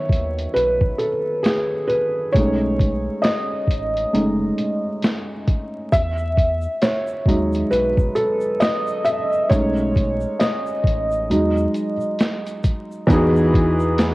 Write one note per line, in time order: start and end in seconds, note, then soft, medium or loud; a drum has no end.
0.00 2.31 D#3 medium
0.00 2.30 F#3 medium
0.00 2.31 B3 medium
0.00 0.57 C#5 medium
0.00 2.36 E5 loud
0.09 0.47 D#2 medium
0.09 kick medium
0.09 closed hi-hat medium
0.39 closed hi-hat medium
0.54 0.93 B1 medium
0.54 1.01 B4 medium
0.54 closed hi-hat medium
0.81 kick medium
0.99 1.09 A4 medium
0.99 closed hi-hat medium
1.43 1.90 G#4 medium
1.43 snare loud
1.43 closed hi-hat medium
1.88 2.35 B4 medium
1.88 closed hi-hat medium
2.33 3.09 B1 loud
2.33 4.12 G#3 soft
2.33 4.12 A3 medium
2.33 4.12 C#4 soft
2.33 4.12 D#4 medium
2.33 3.26 C#5 loud
2.33 kick loud
2.33 closed hi-hat medium
2.80 kick medium
2.80 closed hi-hat medium
3.22 4.98 D#5 medium
3.22 snare loud
3.22 closed hi-hat medium
3.67 4.05 A1 medium
3.67 kick medium
3.67 closed hi-hat medium
3.97 closed hi-hat medium
4.13 4.51 F#1 medium
4.13 4.54 G#3 soft
4.13 4.54 A3 soft
4.13 4.54 C#4 soft
4.13 4.54 D#4 medium
4.13 closed hi-hat medium
4.58 closed hi-hat medium
5.02 snare loud
5.02 closed hi-hat medium
5.47 kick medium
5.47 closed hi-hat medium
5.92 6.67 E2 loud
5.92 6.78 E5 loud
5.92 kick loud
5.92 closed hi-hat medium
5.92 shaker medium
6.18 shaker soft
6.38 kick medium
6.38 closed hi-hat medium
6.62 shaker soft
6.82 7.74 C#5 medium
6.82 snare loud
6.82 closed hi-hat medium
6.82 shaker medium
7.07 shaker medium
7.26 7.63 D#2 medium
7.26 7.89 F#3 medium
7.26 7.89 G#3 soft
7.26 7.90 D#4 medium
7.26 kick medium
7.26 closed hi-hat medium
7.52 closed hi-hat medium
7.52 shaker medium
7.71 8.09 B1 medium
7.71 8.17 B4 medium
7.71 closed hi-hat medium
7.71 shaker medium
7.97 kick medium
7.97 shaker medium
8.15 8.62 A4 medium
8.15 closed hi-hat medium
8.15 shaker soft
8.41 shaker soft
8.60 9.02 D#5 loud
8.60 snare loud
8.60 closed hi-hat medium
8.60 shaker medium
8.87 shaker medium
9.05 9.15 E5 medium
9.05 closed hi-hat medium
9.05 shaker medium
9.32 shaker soft
9.49 10.25 B1 loud
9.49 11.26 G#3 medium
9.49 11.26 A3 medium
9.49 11.26 C#4 medium
9.49 11.26 D#4 medium
9.49 10.36 C#5 loud
9.49 kick loud
9.49 closed hi-hat medium
9.49 shaker medium
9.77 shaker soft
9.96 kick medium
9.96 closed hi-hat medium
10.20 shaker soft
10.39 12.15 D#5 medium
10.39 snare loud
10.39 closed hi-hat medium
10.39 shaker medium
10.67 shaker medium
10.84 11.31 A1 medium
10.84 kick medium
10.84 closed hi-hat medium
11.11 shaker medium
11.30 11.67 E2 loud
11.30 11.92 F#3 medium
11.30 11.92 G#3 medium
11.30 11.93 D#4 medium
11.30 closed hi-hat medium
11.30 shaker medium
11.57 shaker medium
11.74 closed hi-hat medium
11.74 shaker soft
12.01 shaker soft
12.19 snare loud
12.19 closed hi-hat medium
12.19 shaker medium
12.46 closed hi-hat soft
12.46 shaker soft
12.64 kick medium
12.64 closed hi-hat medium
12.64 shaker medium
12.91 shaker soft
13.07 14.14 E2 loud
13.07 14.14 E3 loud
13.07 14.14 B3 loud
13.07 14.14 D#4 loud
13.07 kick loud
13.07 closed hi-hat loud
13.07 shaker medium
13.11 14.14 F#4 loud
13.11 14.14 G#4 loud
13.36 shaker soft
13.54 kick loud
13.54 closed hi-hat medium
13.79 shaker soft
13.98 snare loud
13.98 closed hi-hat medium
13.98 shaker medium